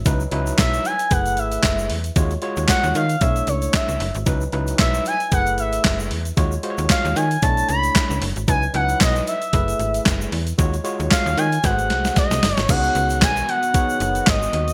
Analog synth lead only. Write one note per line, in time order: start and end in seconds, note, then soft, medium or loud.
0.59 0.87 E5 loud
0.86 1.14 G#5 loud
1.12 1.40 F#5 loud
1.39 1.91 E5 medium
2.69 2.94 F#5 loud
2.95 3.23 F5 loud
3.22 3.50 E5 loud
3.49 3.76 C#5 medium
3.74 4.15 E5 medium
4.80 5.04 E5 medium
5.07 5.31 G#5 loud
5.33 5.57 F#5 loud
5.59 6.08 E5 medium
6.90 7.17 F5 medium
7.16 7.44 G#5 medium
7.42 7.68 A5 loud
7.68 8.18 B5 loud
8.48 8.73 G#5 loud
8.75 8.99 F#5 loud
9.01 9.26 D#5 loud
9.28 10.29 E5 medium
11.11 11.40 F5 loud
11.38 11.66 G#5 loud
11.65 12.17 F#5 loud
12.18 12.56 D#5 medium
12.56 12.71 C#5 medium
12.70 13.22 F#5 medium
13.23 13.50 G#5 loud
13.49 14.30 F#5 loud
14.28 14.73 D#5 medium